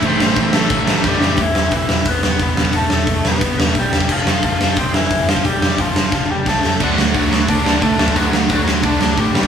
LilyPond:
<<
  \new Staff \with { instrumentName = "Lead electric guitar" } { \time 4/4 \key e \phrygian \tempo 4 = 177 <c' c''>4. <a a'>4. <g g'>4 | <e e'>4 <e e'>4 <b b'>4 <b b'>4 | <a a'>8 <a a'>4 <b b'>4. <g g'>4 | <f f'>4 <f f'>4 <c' c''>8 <e e'>4 <f f'>8 |
<g g'>4 <f f'>4 <f f'>8 <g g'>8 <a a'>4 | <fis fis'>4 <fis fis'>4 <d' d''>4 <a a'>4 | <fis fis'>4 <fis fis'>4 <d' d''>4 <g g'>4 | }
  \new Staff \with { instrumentName = "Distorted electric guitar" } { \time 4/4 \key e \phrygian <a, e a>4. <a, e a>4. <a, e a>4 | r1 | r1 | r1 |
r1 | <d a d'>8 <d a d'>8 <d a d'>8 <d a d'>8 <d a d'>8 <d a d'>8 <d a d'>8 <d a d'>8 | <d a d'>8 <d a d'>8 <d a d'>8 <d a d'>8 <d a d'>8 <d a d'>8 <d a d'>8 <g, d g>8 | }
  \new Staff \with { instrumentName = "Overdriven electric guitar" } { \time 4/4 \key e \phrygian <a, e a>4. <a, e a>2~ <a, e a>8 | r1 | r1 | r1 |
r1 | <d a d'>8 <d a>8 <d a d'>8 <d a>8 <d a>8 <d a d'>8 <d a>8 <d a>8 | <d a d'>8 <d a>8 <d a d'>8 <d a>8 <d a d'>8 <d a>8 <d a>8 <g, d g>8 | }
  \new Staff \with { instrumentName = "Distorted electric guitar" } { \clef bass \time 4/4 \key e \phrygian <a, e a>4. <a, e a>4. <a, e a>4 | r1 | r1 | r1 |
r1 | <d a d'>8 <d a>8 <d a d'>8 <d a>8 <d a>8 <d a d'>8 <d a>8 <d a>8 | <d a d'>8 <d a>8 <d a d'>8 <d a>8 <d a d'>8 <d a>8 <d a>8 <g, d g>8 | }
  \new Staff \with { instrumentName = "Picked electric bass" } { \clef bass \time 4/4 \key e \phrygian a,,8 a,,8 a,,4 a,,8 a,,8 f,,4 | e,,8 e,,8 e,,8 e,,8 e,,8 e,,8 e,,8 e,,8 | e,,8 e,,8 e,,8 e,,8 e,,8 e,,8 b,,8 e,,8 | f,,8 f,,8 f,,8 f,,8 f,,8 f,,8 f,,8 f,,8 |
f,,8 f,,8 f,,8 f,,8 f,,8 f,,8 c,8 f,,8 | d,8 d,8 d,8 d,8 d,8 d,8 d,8 d,8 | d,8 d,8 d,8 d,8 d,8 d,8 a,,8 g,,8 | }
  \new DrumStaff \with { instrumentName = "Drums" } \drummode { \time 4/4 <cymc bd>8 sn8 <cymc bd>8 sn8 <cymc bd>8 sn8 <bd sn>8 sn8 | <hho bd>8 sn8 <hho bd>8 sn8 <hho bd>8 sn8 <hho bd>8 sn16 bd16 | <hho bd>8 sn8 <hho bd>8 sn8 <hho bd>8 sn8 <hho bd>8 sn16 bd16 | <cymc bd>8 sn8 <hho bd>8 sn8 <hho bd>8 sn8 <hho bd>8 sn16 bd16 |
<hho bd>8 sn8 <hho bd>8 sn8 <bd sn>4 <bd sn>8 sn8 | <cymc bd>8 sn8 <hho bd>8 sn8 <hho bd>8 sn8 <hho bd>8 sn16 bd16 | <hho bd>8 sn8 <hho bd>8 sn8 <hho bd>8 sn8 <hho bd>8 sn16 bd16 | }
>>